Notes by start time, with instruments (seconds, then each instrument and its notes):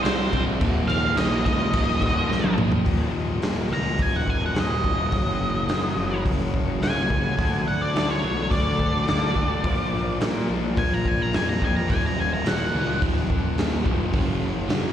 0.03 picked electric bass C2, distorted electric guitar C3 G3 C4, lead electric guitar C5, snare, crash
0.31 picked electric bass A#1, distorted electric guitar C3 G3 C4, kick, crash
0.59 picked electric bass D#1, distorted electric guitar D#2 A#2 D#3, kick, crash
0.88 picked electric bass D#1, distorted electric guitar D#2 A#2 D#3, lead electric guitar F5, crash
1.16 picked electric bass A#1, distorted electric guitar D#2 A#2 D#3, lead electric guitar D#5, snare, crash
1.44 picked electric bass C#2, distorted electric guitar D#2 A#2 D#3, lead electric guitar D#5, kick, crash
1.72 picked electric bass D#1, distorted electric guitar D#2 A#2 D#3, kick, crash
1.89 snare
2.00 picked electric bass D#1, distorted electric guitar D#2 A#2 D#3, kick, crash
2.28 picked electric bass A#1, distorted electric guitar D#2 A#2 D#3, snare
2.44 high tom
2.57 distorted electric guitar D#2 A#2 D#3, mid tom
2.72 floor tom
2.84 picked electric bass D#1, distorted electric guitar D#2 A#2 D#3, clean electric guitar D#2 A#2 D#3 F#3 A#3, kick, open hi-hat
2.88 clean electric guitar D#4
3.13 picked electric bass D#1, clean electric guitar D#3 F#3 A#3 D#4
3.40 picked electric bass D#1, distorted electric guitar D#2 A#2 D#3, clean electric guitar D#2 A#2 D#3 F#3 A#3, snare, open hi-hat
3.45 clean electric guitar D#4
3.56 clean electric guitar D#3 F#3 A#3 D#4
3.69 picked electric bass C#2, distorted electric guitar D#2 A#2 D#3, muted clean electric guitar stroke
3.73 lead electric guitar A#5
3.84 clean electric guitar D#3 F#3 A#3 D#4
3.97 picked electric bass D#1, distorted electric guitar D#2 A#2 D#3, kick, open hi-hat
4.02 lead electric guitar G#5
4.12 clean electric guitar D#3 F#3 A#3 D#4
4.16 lead electric guitar F#5
4.28 lead electric guitar G#5, kick
4.40 clean electric guitar D#3 F#3 A#3 D#4
4.46 lead electric guitar F#5
4.54 picked electric bass D#1, clean electric guitar D#2 A#2 D#3 F#3 A#3 D#4, distorted electric guitar D#2 A#2 D#3, snare, open hi-hat
4.60 lead electric guitar D#5
4.68 clean electric guitar F#3 A#3 D#4
4.72 clean electric guitar D#3
4.82 picked electric bass D#1, distorted electric guitar D#2 A#2 D#3, clean electric guitar D#3 F#3 A#3 D#4, kick
4.96 clean electric guitar D#3 F#3 A#3 D#4
5.11 picked electric bass F#1, distorted electric guitar F#2 C#3 F#3, clean electric guitar F#2 C#3 F#3 A#3 C#4 F#4, kick, open hi-hat
5.39 picked electric bass F#1, clean electric guitar F#3 A#3 C#4 F#4
5.67 clean electric guitar F#2 C#3 F#3 A#3 C#4 F#4, distorted electric guitar F#2 C#3 F#3, picked electric bass F#2, snare, open hi-hat
5.81 clean electric guitar F#3 A#3 C#4 F#4
5.96 picked electric bass F#1, distorted electric guitar F#2 C#3 F#3, muted clean electric guitar stroke
6.08 clean electric guitar F#3 A#3 C#4 F#4
6.24 picked electric bass F#1, distorted electric guitar F#2 C#3 F#3, kick, open hi-hat
6.36 clean electric guitar F#3 A#3 C#4 F#4
6.54 kick
6.65 clean electric guitar F#3 A#3 C#4 F#4
6.79 picked electric bass C#2, clean electric guitar F#2 C#3 F#3 A#3 C#4 F#4, distorted electric guitar F#2 C#3 F#3, open hi-hat
6.83 lead electric guitar G#5, snare
6.94 clean electric guitar F#3 A#3 C#4 F#4
7.08 picked electric bass C#2, distorted electric guitar F#2 C#3 F#3, clean electric guitar F#3 A#3 C#4 F#4, kick
7.21 clean electric guitar F#3 A#3 C#4 F#4
7.35 picked electric bass D2, clean electric guitar D3 A3 D4 F#4 A4, distorted electric guitar D3 A3 D4, kick, open hi-hat
7.63 clean electric guitar A3 D4 F#4 A4
7.67 picked electric bass D2, lead electric guitar F#5
7.82 lead electric guitar D5
7.92 picked electric bass D2, clean electric guitar D3 A3 D4 F#4 A4, distorted electric guitar D3 A3 D4
7.96 snare, open hi-hat
8.06 clean electric guitar D4 F#4 A4
8.11 lead electric guitar C#5
8.21 picked electric bass B1, distorted electric guitar D3 A3 D4, muted clean electric guitar stroke
8.34 clean electric guitar D4 F#4 A4
8.50 picked electric bass D2, distorted electric guitar D3 A3 D4, lead electric guitar D5, kick, open hi-hat
8.62 clean electric guitar D4 F#4 A4
8.80 kick
8.90 clean electric guitar D4 F#4 A4
9.05 picked electric bass D2, clean electric guitar D3 A3 D4 F#4 A4, distorted electric guitar D3 A3 D4, snare, open hi-hat
9.20 clean electric guitar D4 F#4 A4
9.34 picked electric bass D2, distorted electric guitar D3 A3 D4, clean electric guitar A3 D4 F#4 A4, kick
9.47 clean electric guitar D4 F#4 A4
9.60 clean electric guitar A#2 F3 A#3 D4 F4, distorted electric guitar A#2 F3 A#3, kick, open hi-hat
9.65 picked electric bass A#1
9.90 picked electric bass A#1, clean electric guitar F3 A#3 D4 F4
10.18 clean electric guitar A#2 F3 A#3 D4 F4, distorted electric guitar A#2 F3 A#3, picked electric bass A#2, snare, open hi-hat
10.32 clean electric guitar A#3 D4 F4
10.47 picked electric bass A#1, distorted electric guitar A#2 F3 A#3, muted clean electric guitar stroke
10.60 clean electric guitar A#3 D4 F4
10.75 picked electric bass A#1, distorted electric guitar A#2 F3 A#3, lead electric guitar G#5, kick, open hi-hat
10.89 clean electric guitar A#3 D4 F4
10.94 lead electric guitar A#5
11.05 lead electric guitar G#5, kick
11.18 clean electric guitar A#3 D4 F4, lead electric guitar A#5
11.31 picked electric bass F2, clean electric guitar A#2 F3 A#3 D4 F4, distorted electric guitar A#2 F3 A#3, snare, open hi-hat
11.35 lead electric guitar G#5
11.45 clean electric guitar A#3 D4 F4, lead electric guitar A#5
11.59 picked electric bass F2, distorted electric guitar A#2 F3 A#3, clean electric guitar F3 A#3 D4 F4, kick
11.65 lead electric guitar G#5
11.73 clean electric guitar A#3 D4 F4, lead electric guitar A#5
11.88 picked electric bass D#1, distorted electric guitar D#2 A#2 D#3, lead electric guitar G#5, kick, open hi-hat
12.06 lead electric guitar A#5
12.18 picked electric bass D#1, lead electric guitar G#5
12.33 lead electric guitar A#5
12.44 picked electric bass D#1, distorted electric guitar D#2 A#2 D#3, lead electric guitar F#5, snare, open hi-hat
12.73 picked electric bass C#2, distorted electric guitar D#2 A#2 D#3
13.01 picked electric bass D#1, distorted electric guitar D#2 A#2 D#3, kick, open hi-hat
13.30 kick
13.56 picked electric bass D#1, distorted electric guitar D#2 A#2 D#3, snare, open hi-hat
13.84 picked electric bass F1, distorted electric guitar D#2 A#2 D#3, kick
14.12 picked electric bass F#1, distorted electric guitar F#2 C#3 F#3, kick, open hi-hat
14.40 picked electric bass F#1
14.68 distorted electric guitar F#2 C#3 F#3, picked electric bass F#2, snare, open hi-hat